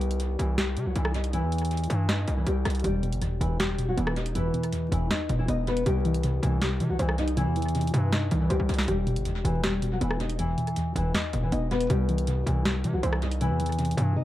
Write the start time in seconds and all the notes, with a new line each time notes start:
Already playing: C2 G3 G4
0.01 closed hi-hat
0.11 closed hi-hat
0.20 closed hi-hat
0.39 C2 E3 E4, closed hi-hat
0.58 G3 G4, snare, closed hi-hat
0.77 C3, closed hi-hat
0.86 C2 F#3 F#4
0.96 C2 E3 E4, closed hi-hat
1.05 cross-stick
1.14 D#4 D#5, closed hi-hat
1.24 closed hi-hat
1.33 E3 E4, closed hi-hat
1.43 E2
1.52 closed hi-hat
1.58 closed hi-hat
1.65 closed hi-hat
1.71 closed hi-hat
1.77 closed hi-hat
1.84 closed hi-hat
1.90 G2 E3 E4, closed hi-hat
2.09 D#4 D#5, snare, closed hi-hat
2.28 C2, closed hi-hat
2.37 E3 E4
2.47 C2 G3 G4, closed hi-hat
2.65 C2, cross-stick, closed hi-hat
2.70 closed hi-hat
2.75 closed hi-hat
2.80 closed hi-hat
2.84 E1 E2 G3 G4, closed hi-hat
3.03 B2, closed hi-hat
3.13 G1, closed hi-hat
3.22 E2, closed hi-hat
3.27 E1
3.41 E1 E2 E3 E4, closed hi-hat
3.60 E2 G3 G4, snare, closed hi-hat
3.78 B2, closed hi-hat
3.88 F#3 F#4
3.97 E1 E3 B3 E4, closed hi-hat
4.07 cross-stick
4.16 D#4 D#5, closed hi-hat
4.26 closed hi-hat
4.35 E2 E3 E4, closed hi-hat
4.54 B2, closed hi-hat
4.63 closed hi-hat
4.73 E2, closed hi-hat
4.92 E1 E2 E3 E4, closed hi-hat
5.11 E2 D#4 D#5, snare, closed hi-hat
5.29 E1 B2, closed hi-hat
5.39 E3 E4
5.48 E1 B3 D#4 D#5, closed hi-hat
5.67 B3 B4, closed hi-hat
5.77 closed hi-hat
5.86 C2 C3 G3 G4, closed hi-hat
6.05 E3, closed hi-hat
6.14 closed hi-hat
6.23 C3, closed hi-hat
6.43 C2 C3 E3 E4, closed hi-hat
6.61 C3 G3 G4, snare, closed hi-hat
6.80 C3 E3, closed hi-hat
6.89 C2 F#3 F#4
6.99 C2 E3 E4 C5, closed hi-hat
7.09 cross-stick
7.18 D#4 D#5, closed hi-hat
7.28 closed hi-hat
7.37 C3 E3 E4, closed hi-hat
7.47 E2
7.56 E3, closed hi-hat
7.62 closed hi-hat
7.68 closed hi-hat
7.75 C3, closed hi-hat
7.81 closed hi-hat
7.87 closed hi-hat
7.94 G2 C3 E3 E4, closed hi-hat
8.12 C3 D#4 D#5, snare, closed hi-hat
8.31 C2 E3, closed hi-hat
8.41 E3 E4
8.50 C2 G3 G4 C5, closed hi-hat
8.60 C2
8.69 C2, closed hi-hat
8.74 closed hi-hat
8.79 snare, closed hi-hat
8.83 closed hi-hat
8.88 E1 E2 G3 G4, closed hi-hat
9.07 B2, closed hi-hat
9.16 G1, closed hi-hat
9.25 E2, closed hi-hat
9.30 E1
9.44 E1 E2 E3 E4, closed hi-hat
9.63 E2 G3 G4, snare, closed hi-hat
9.82 B2, closed hi-hat
9.92 F#3 F#4
10.01 E1 E3 B3 E4, closed hi-hat
10.11 cross-stick
10.20 D#4 D#5, closed hi-hat
10.30 closed hi-hat
10.39 E2 E3 E4, closed hi-hat
10.58 B2, closed hi-hat
10.67 closed hi-hat
10.76 E2, closed hi-hat
10.96 E1 E2 E3 E4, closed hi-hat
11.14 E2 D#4 D#5, snare, closed hi-hat
11.33 E1 B2, closed hi-hat
11.43 E3 E4
11.52 E1 B3 D#4 D#5, closed hi-hat
11.71 B3 B4, closed hi-hat
11.81 closed hi-hat
11.90 C2 C3 G3 G4, closed hi-hat
12.09 E3, closed hi-hat
12.18 closed hi-hat
12.27 C3, closed hi-hat
12.46 C2 C3 E3 E4, closed hi-hat
12.65 C3 G3 G4, snare, closed hi-hat
12.84 C3 E3, closed hi-hat
12.93 C2 F#3 F#4
13.03 C2 E3 E4 C5, closed hi-hat
13.13 cross-stick
13.22 D#4 D#5, closed hi-hat
13.31 closed hi-hat
13.41 C3 E3 E4, closed hi-hat
13.50 E2
13.60 E3, closed hi-hat
13.66 closed hi-hat
13.72 closed hi-hat
13.79 C3, closed hi-hat
13.85 closed hi-hat
13.91 closed hi-hat
13.97 G2 C3 E3 E4, closed hi-hat
14.16 C3 D#4 D#5